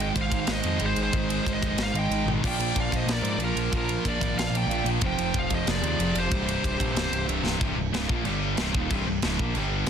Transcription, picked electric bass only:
Already playing: G#1
0.15 G#1
0.30 G#1
0.47 G#1
0.64 F2
0.80 G#1
0.96 G#1
1.13 G#1
1.46 G#1
1.62 F1
1.77 G#1
1.94 G#1
2.10 G#1
2.25 G#1
2.44 A#1
2.58 A#1
2.75 A#1
2.92 A#1
3.06 A#1
3.22 G#2
3.37 A#1
3.55 A#1
3.72 A#1
4.05 A#1
4.21 G#1
4.34 A#1
4.50 A#1
4.67 A#1
4.84 A#1
5.01 F1
5.18 F1
5.34 F1
5.51 F1
5.67 F1
5.82 D#2
5.99 F1
6.15 F1
6.31 C1
6.63 C1
6.79 A#1
6.94 C1
7.10 C1
7.27 C1
7.43 C1
7.60 C1
7.76 C1
7.92 C#1
8.09 A#1
8.25 G1
8.58 C1
8.75 D#1
8.90 C1
9.07 C1
9.23 C#1
9.39 A#1
9.56 G1
9.87 C1

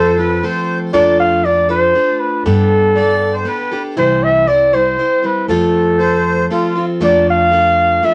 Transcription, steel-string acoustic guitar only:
Already playing: F3 A3 C4 F4 A4
0.18 C4 F4 A4
0.43 A3 C4 F4 A4
0.93 F3 A3 D4 F4 A4
1.44 A3 D4 F4 A4
1.69 D4 F4 A4
1.94 A3 D4 F4 A4
2.46 G3 B3 D4 G4 A4
2.95 B3 D4 G4 A4
3.45 B3 D4 G4 A4
3.71 D4 G4 A4
3.97 C3 E3 G3 C4 E4 C5
4.47 G3 C4 E4 C5
4.73 G3 C4 E4 C5
4.98 G3 C4 E4 C5
5.23 G3 C4 E4 C5
5.49 F3 A3 C4 F4 A4
5.99 A3 C4 F4 A4
6.50 A3 C4 F4 A4
6.75 C4 F4 A4
7.01 F3 A3 D4 F4 A4
7.51 A3 D4 F4 A4
8.02 A3 D4 F4 A4

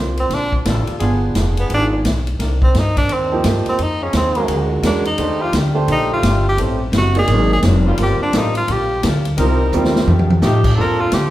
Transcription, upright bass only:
Already playing: C2
0.30 A#1
0.65 A1
0.88 muted upright bass stroke
1.01 G1
1.35 F1
1.70 G#1
2.05 B1
2.39 C2
2.74 G2
3.09 D#2
3.44 G2
3.67 muted upright bass stroke
3.79 F2
4.13 D#2
4.48 D2
4.82 E2
5.19 D#2
5.53 D2
5.88 A#1
6.23 G1
6.57 A1
6.92 F#1
7.28 G#1
7.63 F1
7.98 G1
8.20 muted upright bass stroke
8.33 A1
8.68 A#1
9.04 D2
9.38 C2
9.72 D#2
10.07 F2
10.42 A2
10.76 F2
11.11 D2

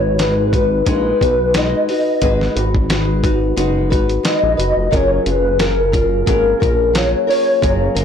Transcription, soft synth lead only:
Already playing: C#5
0.21 B4
0.87 B4
1.55 D#5
1.89 D#5
4.27 D#5
4.94 C#5
5.28 B4
5.60 A#4
5.95 A#4
6.95 C#5
7.29 C#5

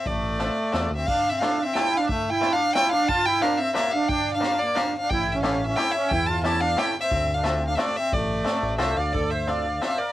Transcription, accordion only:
0.08 A3
0.97 C4
1.08 D4
1.31 C4
1.41 D4
1.64 C4
1.75 E4
1.97 D4
2.09 A3
2.31 E4
2.51 D4
2.75 E4
2.92 D4
3.09 F4
3.26 E4
3.42 D4
3.59 C4
3.77 A#3
3.95 D4
4.10 D4
4.37 D4
4.62 A#3
4.80 D4
5.01 D4
5.13 E4
5.35 C#4
5.47 C#4
5.67 C#4
5.80 E4
5.96 C#4
6.12 E4
6.29 F4
6.45 E4
6.62 D4
6.79 E4
7.02 C4
7.36 D4
7.46 C4
7.68 D4
7.76 C4
7.82 A3
7.98 C4
8.14 A3
8.81 C5
8.98 D5
9.14 A4
9.30 C5
9.48 D5
9.81 C5
9.87 C5 D5
9.98 A#4

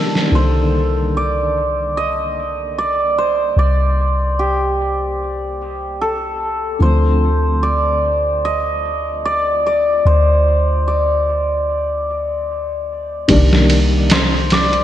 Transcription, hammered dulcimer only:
Already playing: A4
0.35 C5
1.17 D5
1.97 D#5
2.78 D5
3.18 C5
3.59 D5
4.39 G4
6.01 A4
6.82 C5
7.63 D5
8.45 D#5
9.25 D5
9.66 D5
10.07 C5
10.88 D5
14.12 C5
14.53 D5

